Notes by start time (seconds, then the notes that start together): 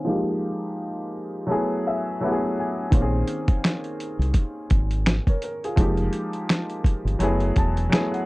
0.05 F3 G#3 A#3 D#4
0.09 G4
1.47 F#3 A3 B3 E4
1.51 G#4
1.87 E5
2.21 F#3 A3 B3 E4 F#5
2.25 G4
2.32 G#4
2.60 G#5
2.91 A#1 D#3 A#3 C4 C#4, kick, closed hi-hat
2.96 G4
3.02 G#4
3.27 closed hi-hat
3.48 kick, closed hi-hat
3.64 finger snap, snare, closed hi-hat
3.84 closed hi-hat
4.00 closed hi-hat
4.19 C2, closed hi-hat
4.34 kick, closed hi-hat
4.70 G#1, kick, closed hi-hat
4.91 closed hi-hat
5.06 finger snap, snare, closed hi-hat
5.27 A#4 C#5, kick, closed hi-hat
5.42 A#4, closed hi-hat
5.64 F4 G#4, closed hi-hat
5.76 F1 F3 G#3 A#3 D#4, kick, closed hi-hat
5.81 G4
5.97 closed hi-hat
6.13 closed hi-hat
6.33 closed hi-hat
6.49 finger snap, snare, closed hi-hat
6.70 closed hi-hat
6.84 kick, closed hi-hat
7.05 G1, closed hi-hat
7.19 F#1 F#3 A3 B3 E4, closed hi-hat
7.23 G#4
7.40 closed hi-hat
7.56 E1 A5, kick, closed hi-hat
7.77 closed hi-hat
7.89 F#3 A3 B3 E4 G#5, finger snap, snare, closed hi-hat
7.94 G#4
8.12 F#5, closed hi-hat